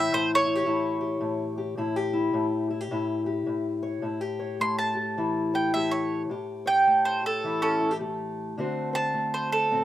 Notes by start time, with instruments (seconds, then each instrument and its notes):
Already playing: steel-string acoustic guitar A2 E3 E4 C#5, mandolin E5
0.12 steel-string acoustic guitar A2, mandolin C5
0.35 mandolin C#5
0.45 steel-string acoustic guitar E4
0.55 steel-string acoustic guitar G4
0.66 steel-string acoustic guitar A2 E4
1.01 steel-string acoustic guitar G4
1.21 steel-string acoustic guitar A2
1.58 steel-string acoustic guitar G4
1.78 steel-string acoustic guitar A2 E4
1.96 steel-string acoustic guitar G4
2.13 steel-string acoustic guitar E4
2.33 steel-string acoustic guitar A2
2.70 steel-string acoustic guitar E4
2.81 steel-string acoustic guitar G4
2.91 steel-string acoustic guitar A2 E4
3.26 steel-string acoustic guitar G4
3.46 steel-string acoustic guitar A2
3.83 steel-string acoustic guitar C#5
4.02 steel-string acoustic guitar A2 E4
4.21 steel-string acoustic guitar G4
4.39 steel-string acoustic guitar C#5
4.60 steel-string acoustic guitar A3, mandolin C6
4.78 mandolin A5
4.95 steel-string acoustic guitar G4
5.17 steel-string acoustic guitar E3 E4
5.54 steel-string acoustic guitar C#5, mandolin G5
5.74 steel-string acoustic guitar A3 G4, mandolin E5
5.91 mandolin C#5
6.30 steel-string acoustic guitar A2 G4
6.66 steel-string acoustic guitar C#5, mandolin G5
6.87 steel-string acoustic guitar A3
7.05 mandolin C5
7.24 steel-string acoustic guitar G4, mandolin A4
7.44 steel-string acoustic guitar E3 E4
7.62 mandolin C#4 A4
7.80 steel-string acoustic guitar E4
7.91 steel-string acoustic guitar G4
8.00 steel-string acoustic guitar A3 G4
8.58 steel-string acoustic guitar D3 A3 C4 F#4 C5
8.93 steel-string acoustic guitar C5, mandolin A5
9.14 steel-string acoustic guitar A3
9.34 mandolin C5
9.50 steel-string acoustic guitar F#4, mandolin A4
9.71 steel-string acoustic guitar A2 C4